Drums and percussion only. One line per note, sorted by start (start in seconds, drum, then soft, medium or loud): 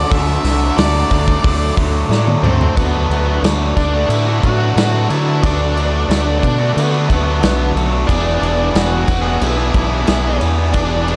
0.12 kick loud
0.12 open hi-hat medium
0.45 snare soft
0.45 open hi-hat medium
0.78 snare loud
0.78 open hi-hat medium
1.11 kick medium
1.11 open hi-hat medium
1.28 kick medium
1.44 kick loud
1.44 open hi-hat medium
1.77 kick medium
1.77 open hi-hat medium
2.11 snare medium
2.27 high tom medium
2.44 mid tom loud
2.61 floor tom medium
2.77 kick loud
2.77 crash medium
3.11 crash medium
3.44 snare loud
3.44 crash medium
3.77 kick medium
3.77 snare soft
3.77 crash medium
4.10 crash medium
4.43 kick medium
4.43 crash medium
4.77 snare loud
4.77 crash medium
5.10 crash medium
5.43 kick loud
5.43 crash medium
5.77 crash medium
6.11 snare loud
6.11 crash medium
6.43 kick medium
6.43 crash medium
6.78 crash medium
7.10 kick medium
7.10 crash medium
7.43 snare loud
7.43 crash medium
7.77 crash medium
8.09 kick loud
8.09 crash medium
8.43 crash medium
8.75 snare loud
8.75 crash medium
9.08 kick medium
9.08 crash medium
9.41 crash medium
9.74 kick medium
9.74 crash medium
10.07 snare loud
10.07 crash medium
10.41 crash medium
10.74 kick loud
10.74 crash medium
11.08 crash medium